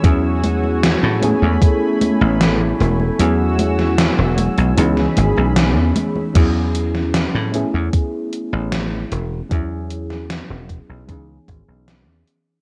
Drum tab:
CC |----------------|----------------|x---------------|----------------|
HH |x-x-x-x-x-x-x-x-|x-x-x-xxx-x-x-x-|x-x-x-x-x-x-x-x-|x-x-x-x-x-x-x-x-|
SD |----o-------o---|---oo----o--o---|---oo-------o---|---oo-------o---|
CG |o-ooo-ooo-ooo-oo|o-ooo-ooo-ooo-oo|----------------|----------------|
BD |o-------o-------|----------------|o-------o-------|o-----o-o-o-----|